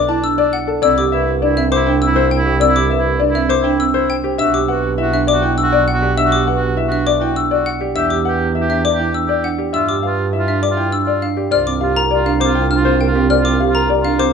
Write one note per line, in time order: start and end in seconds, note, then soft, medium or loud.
0.00 0.67 B1 medium
0.00 0.13 D5 medium
0.00 0.13 D6 medium
0.06 0.27 D4 soft
0.06 0.28 E4 loud
0.06 0.28 A5 medium
0.24 0.43 D4 medium
0.24 0.43 E6 medium
0.36 0.58 D4 soft
0.36 0.57 D5 medium
0.53 0.72 F#5 medium
0.68 0.87 A4 medium
0.68 0.87 D5 medium
0.82 4.23 C2 medium
0.82 1.02 C4 medium
0.82 1.04 E4 soft
0.82 1.02 D5 medium
0.82 1.02 E6 medium
0.98 1.17 G4 medium
0.98 1.17 D6 medium
1.12 1.35 E4 medium
1.12 1.32 B4 medium
1.12 1.32 E5 medium
1.28 1.47 G4 medium
1.42 1.62 D4 medium
1.42 1.66 E4 medium
1.42 1.61 D5 medium
1.57 1.76 C4 medium
1.57 1.76 E5 medium
1.72 1.91 C5 medium
1.72 1.91 D6 medium
1.76 1.98 E4 medium
1.86 2.06 D4 loud
1.86 2.06 G5 medium
2.02 2.21 C4 medium
2.02 2.21 E6 medium
2.06 2.28 E4 medium
2.16 2.36 C5 medium
2.31 2.51 G5 medium
2.38 2.60 E4 medium
2.46 2.65 G4 medium
2.46 2.66 C5 medium
2.60 2.80 C4 medium
2.60 2.80 D5 medium
2.60 2.80 E6 medium
2.69 2.90 E4 medium
2.76 2.95 G4 medium
2.76 2.95 D6 medium
2.90 3.10 B4 medium
2.90 3.10 E5 medium
2.99 3.21 E4 medium
3.06 3.25 G4 medium
3.20 3.40 D4 medium
3.20 3.39 D5 medium
3.30 3.52 E4 medium
3.35 3.55 C4 medium
3.35 3.55 E5 medium
3.49 3.69 C5 medium
3.49 3.69 D6 medium
3.62 3.84 D4 medium
3.62 3.84 E4 medium
3.62 3.84 G5 medium
3.80 3.99 C4 medium
3.80 3.99 E6 medium
3.93 4.15 E4 soft
3.93 4.14 C5 medium
4.10 4.29 G5 medium
4.24 4.43 G4 medium
4.24 4.44 C5 medium
4.38 7.80 B1 medium
4.38 4.58 D4 medium
4.38 4.61 F#4 soft
4.38 4.58 E5 medium
4.38 4.59 E6 medium
4.54 4.73 G4 medium
4.54 4.73 D6 medium
4.68 4.92 F#4 medium
4.68 4.88 B4 medium
4.68 4.88 F#5 medium
4.83 5.03 G4 medium
4.98 5.18 E4 medium
4.98 5.23 F#4 medium
4.98 5.18 E5 medium
5.13 5.33 D4 medium
5.13 5.33 E5 medium
5.27 5.47 D5 medium
5.27 5.48 D6 medium
5.33 5.54 F#4 medium
5.42 5.62 E4 medium
5.42 5.62 G5 medium
5.58 5.77 D4 medium
5.58 5.77 E6 medium
5.63 5.85 F#4 medium
5.72 5.92 D5 medium
5.88 6.07 F#5 medium
5.94 6.16 F#4 medium
6.02 6.22 G4 medium
6.02 6.22 D5 medium
6.17 6.37 D4 medium
6.17 6.37 E5 medium
6.17 6.37 E6 medium
6.25 6.47 F#4 medium
6.32 6.52 G4 medium
6.32 6.52 D6 medium
6.47 6.66 B4 medium
6.47 6.66 F#5 medium
6.56 6.78 F#4 medium
6.62 6.81 G4 medium
6.77 6.96 E4 medium
6.77 6.96 E5 medium
6.88 7.11 D4 medium
6.88 7.09 F#4 medium
6.92 7.11 E5 medium
7.07 7.26 D5 medium
7.07 7.26 D6 medium
7.19 7.41 E4 medium
7.19 7.40 F#4 soft
7.19 7.41 G5 medium
7.36 7.55 D4 medium
7.36 7.56 E6 medium
7.50 7.72 F#4 soft
7.50 7.70 D5 medium
7.66 7.85 F#5 medium
7.81 8.00 G4 medium
7.81 8.00 D5 medium
7.95 9.58 E2 medium
7.95 8.15 D4 medium
7.95 8.19 G4 soft
7.95 8.15 E5 medium
7.95 8.15 E6 medium
8.10 8.30 G4 medium
8.10 8.30 D6 medium
8.25 8.51 G4 medium
8.25 8.45 B4 medium
8.25 8.45 F#5 medium
8.40 8.59 G4 medium
8.55 8.74 E4 medium
8.55 8.74 E5 medium
8.61 8.84 G4 medium
8.70 8.89 D4 medium
8.70 8.89 E5 medium
8.85 9.04 D5 medium
8.85 9.04 D6 medium
8.94 9.17 G4 medium
8.99 9.19 E4 medium
8.99 9.19 G5 medium
9.14 9.34 D4 medium
9.14 9.34 E6 medium
9.26 9.49 G4 soft
9.26 9.48 D5 medium
9.44 9.64 D4 medium
9.44 9.63 F#5 medium
9.58 9.78 G4 medium
9.58 9.78 D5 medium
9.73 11.36 G2 medium
9.73 9.93 D4 medium
9.73 9.96 F4 soft
9.73 9.93 E5 medium
9.73 9.93 E6 medium
9.88 10.08 G4 medium
9.88 10.08 D6 medium
10.03 10.29 F4 medium
10.03 10.23 B4 medium
10.03 10.23 F5 medium
10.18 10.38 G4 medium
10.33 10.53 E4 medium
10.33 10.52 E5 medium
10.39 10.62 F4 medium
10.48 10.67 D4 medium
10.48 10.67 E5 medium
10.62 10.82 D5 medium
10.62 10.82 D6 medium
10.71 10.94 F4 medium
10.77 10.97 E4 medium
10.77 10.97 G5 medium
10.92 11.12 D4 medium
10.92 11.12 E6 medium
11.04 11.27 F4 soft
11.04 11.27 D5 medium
11.22 11.42 D4 medium
11.22 11.42 F5 medium
11.37 11.56 G4 medium
11.37 11.56 D5 medium
11.51 14.33 C2 medium
11.51 11.74 F4 soft
11.51 11.71 C5 medium
11.51 11.71 D5 medium
11.51 11.71 F6 medium
11.66 11.86 C4 medium
11.66 11.86 D6 medium
11.81 12.05 F4 medium
11.81 12.01 G4 medium
11.81 12.01 F5 medium
11.96 12.16 A#4 medium
11.96 12.16 A#5 medium
12.11 12.36 F4 medium
12.11 12.31 G4 medium
12.11 12.31 D5 medium
12.26 12.46 D4 medium
12.26 12.46 F5 medium
12.40 12.60 C4 medium
12.40 12.60 C5 medium
12.40 12.60 D6 medium
12.45 12.67 F4 medium
12.55 12.75 F4 medium
12.55 12.75 G5 medium
12.71 12.90 D4 medium
12.71 12.90 F6 medium
12.76 12.98 F4 medium
12.85 13.05 C5 medium
13.00 13.20 A#4 medium
13.00 13.20 G5 medium
13.07 13.29 F4 medium
13.15 13.35 C4 medium
13.15 13.35 G4 medium
13.30 13.49 C5 medium
13.30 13.49 D5 medium
13.30 13.50 F6 medium
13.39 13.60 F4 medium
13.45 13.64 C4 medium
13.45 13.64 D6 medium
13.60 13.79 G4 medium
13.60 13.79 F5 medium
13.70 13.91 F4 medium
13.75 13.94 A#4 medium
13.75 13.94 A#5 medium
13.90 14.09 G4 medium
13.90 14.09 D5 medium
14.01 14.22 F4 medium
14.01 14.24 F5 medium
14.05 14.24 D4 medium
14.19 14.33 C4 medium
14.19 14.33 C5 medium
14.19 14.33 D6 medium